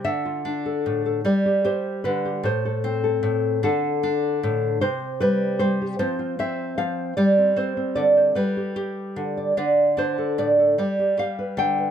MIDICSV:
0, 0, Header, 1, 2, 480
1, 0, Start_track
1, 0, Tempo, 792602
1, 24, Time_signature, 6, 3, 24, 8
1, 4823, Tempo, 801068
1, 7186, End_track
2, 0, Start_track
2, 0, Title_t, "Nylon-string guitar"
2, 0, Program_c, 0, 24
2, 27, Note_on_c, 0, 50, 61
2, 28, Note_on_c, 0, 76, 83
2, 153, Note_on_c, 0, 65, 42
2, 272, Note_on_c, 0, 62, 57
2, 397, Note_on_c, 0, 69, 42
2, 520, Note_on_c, 0, 45, 55
2, 632, Note_off_c, 0, 69, 0
2, 640, Note_on_c, 0, 69, 42
2, 727, Note_off_c, 0, 62, 0
2, 728, Note_off_c, 0, 69, 0
2, 729, Note_off_c, 0, 65, 0
2, 754, Note_on_c, 0, 55, 67
2, 756, Note_off_c, 0, 50, 0
2, 756, Note_off_c, 0, 76, 0
2, 758, Note_off_c, 0, 45, 0
2, 760, Note_on_c, 0, 74, 81
2, 882, Note_on_c, 0, 67, 45
2, 989, Note_off_c, 0, 67, 0
2, 996, Note_on_c, 0, 67, 58
2, 997, Note_off_c, 0, 74, 0
2, 1001, Note_on_c, 0, 72, 74
2, 1233, Note_off_c, 0, 72, 0
2, 1236, Note_on_c, 0, 71, 77
2, 1241, Note_on_c, 0, 50, 61
2, 1356, Note_off_c, 0, 67, 0
2, 1364, Note_on_c, 0, 67, 44
2, 1450, Note_off_c, 0, 67, 0
2, 1474, Note_on_c, 0, 45, 73
2, 1475, Note_off_c, 0, 55, 0
2, 1475, Note_off_c, 0, 71, 0
2, 1478, Note_off_c, 0, 50, 0
2, 1485, Note_on_c, 0, 72, 86
2, 1606, Note_on_c, 0, 69, 45
2, 1719, Note_on_c, 0, 60, 63
2, 1832, Note_off_c, 0, 69, 0
2, 1839, Note_on_c, 0, 69, 47
2, 1947, Note_off_c, 0, 45, 0
2, 1954, Note_on_c, 0, 45, 60
2, 2170, Note_off_c, 0, 60, 0
2, 2196, Note_off_c, 0, 45, 0
2, 2197, Note_off_c, 0, 69, 0
2, 2198, Note_on_c, 0, 50, 75
2, 2202, Note_off_c, 0, 72, 0
2, 2204, Note_on_c, 0, 69, 85
2, 2442, Note_on_c, 0, 62, 62
2, 2685, Note_on_c, 0, 45, 64
2, 2890, Note_off_c, 0, 62, 0
2, 2913, Note_off_c, 0, 69, 0
2, 2915, Note_on_c, 0, 72, 94
2, 2917, Note_off_c, 0, 45, 0
2, 2917, Note_off_c, 0, 50, 0
2, 2919, Note_on_c, 0, 48, 74
2, 3152, Note_on_c, 0, 71, 95
2, 3158, Note_on_c, 0, 55, 62
2, 3380, Note_off_c, 0, 72, 0
2, 3385, Note_off_c, 0, 55, 0
2, 3387, Note_on_c, 0, 72, 89
2, 3392, Note_on_c, 0, 55, 59
2, 3510, Note_off_c, 0, 71, 0
2, 3521, Note_on_c, 0, 67, 41
2, 3601, Note_off_c, 0, 55, 0
2, 3603, Note_off_c, 0, 48, 0
2, 3607, Note_off_c, 0, 67, 0
2, 3619, Note_off_c, 0, 72, 0
2, 3628, Note_on_c, 0, 72, 88
2, 3629, Note_on_c, 0, 53, 76
2, 3633, Note_on_c, 0, 60, 49
2, 3638, Note_on_c, 0, 65, 47
2, 3742, Note_off_c, 0, 65, 0
2, 3749, Note_on_c, 0, 65, 47
2, 3862, Note_off_c, 0, 60, 0
2, 3869, Note_on_c, 0, 60, 57
2, 3873, Note_on_c, 0, 76, 90
2, 4100, Note_off_c, 0, 53, 0
2, 4102, Note_off_c, 0, 76, 0
2, 4104, Note_on_c, 0, 77, 91
2, 4107, Note_on_c, 0, 53, 61
2, 4315, Note_off_c, 0, 65, 0
2, 4316, Note_off_c, 0, 53, 0
2, 4316, Note_off_c, 0, 60, 0
2, 4338, Note_off_c, 0, 77, 0
2, 4341, Note_on_c, 0, 74, 92
2, 4342, Note_off_c, 0, 72, 0
2, 4345, Note_on_c, 0, 55, 70
2, 4470, Note_on_c, 0, 60, 45
2, 4573, Note_off_c, 0, 60, 0
2, 4581, Note_on_c, 0, 60, 58
2, 4585, Note_on_c, 0, 72, 89
2, 4698, Note_off_c, 0, 60, 0
2, 4705, Note_on_c, 0, 60, 47
2, 4810, Note_off_c, 0, 74, 0
2, 4817, Note_on_c, 0, 74, 84
2, 4825, Note_on_c, 0, 50, 53
2, 4938, Note_off_c, 0, 72, 0
2, 4945, Note_on_c, 0, 72, 41
2, 5033, Note_off_c, 0, 50, 0
2, 5034, Note_off_c, 0, 72, 0
2, 5054, Note_off_c, 0, 55, 0
2, 5056, Note_on_c, 0, 71, 81
2, 5058, Note_off_c, 0, 74, 0
2, 5061, Note_on_c, 0, 55, 71
2, 5062, Note_off_c, 0, 60, 0
2, 5186, Note_on_c, 0, 67, 46
2, 5293, Note_off_c, 0, 67, 0
2, 5300, Note_on_c, 0, 67, 55
2, 5542, Note_on_c, 0, 50, 57
2, 5667, Note_on_c, 0, 74, 40
2, 5756, Note_off_c, 0, 50, 0
2, 5756, Note_off_c, 0, 67, 0
2, 5783, Note_off_c, 0, 71, 0
2, 5786, Note_off_c, 0, 55, 0
2, 5786, Note_on_c, 0, 50, 67
2, 5789, Note_off_c, 0, 74, 0
2, 5789, Note_on_c, 0, 74, 86
2, 6025, Note_on_c, 0, 62, 58
2, 6030, Note_off_c, 0, 74, 0
2, 6032, Note_on_c, 0, 72, 92
2, 6152, Note_on_c, 0, 69, 44
2, 6272, Note_off_c, 0, 72, 0
2, 6272, Note_on_c, 0, 45, 59
2, 6275, Note_on_c, 0, 74, 88
2, 6388, Note_off_c, 0, 69, 0
2, 6395, Note_on_c, 0, 69, 39
2, 6484, Note_off_c, 0, 69, 0
2, 6507, Note_off_c, 0, 74, 0
2, 6510, Note_off_c, 0, 62, 0
2, 6511, Note_off_c, 0, 45, 0
2, 6511, Note_off_c, 0, 50, 0
2, 6512, Note_on_c, 0, 55, 68
2, 6516, Note_on_c, 0, 74, 90
2, 6637, Note_on_c, 0, 67, 49
2, 6739, Note_off_c, 0, 67, 0
2, 6746, Note_on_c, 0, 67, 58
2, 6757, Note_on_c, 0, 77, 91
2, 6869, Note_off_c, 0, 74, 0
2, 6874, Note_on_c, 0, 71, 42
2, 6984, Note_on_c, 0, 50, 62
2, 6989, Note_off_c, 0, 77, 0
2, 6993, Note_on_c, 0, 79, 96
2, 7103, Note_off_c, 0, 71, 0
2, 7110, Note_on_c, 0, 71, 43
2, 7186, Note_off_c, 0, 50, 0
2, 7186, Note_off_c, 0, 55, 0
2, 7186, Note_off_c, 0, 67, 0
2, 7186, Note_off_c, 0, 71, 0
2, 7186, Note_off_c, 0, 79, 0
2, 7186, End_track
0, 0, End_of_file